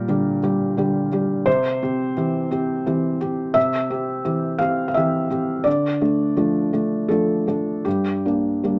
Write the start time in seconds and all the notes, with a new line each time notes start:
Already playing: A#2 G3 G4 A#4
0.08 D3 G3 G4
0.43 G3 G4
0.77 D3 G3 G4
1.12 G3 G4
1.46 C3 C5
1.82 C4 G4
2.17 E3 C4 G4
2.51 C4 G4
2.86 E3 C4 G4
3.21 C4 G4
3.54 C3 E5
3.90 C4 G4
4.25 E3 C4 G4
4.58 C4 G4 F5
4.88 F5
4.94 E3 C4 G4 E5
5.30 C4 G4
5.64 D3 D5
6.01 A3 D4
6.36 F3 A3 D4
6.73 A3 D4
7.08 F3 A3 D4 A4
7.47 A3 D4
7.85 G2 G4
8.25 A#3 D4
8.63 G3 A#3 D4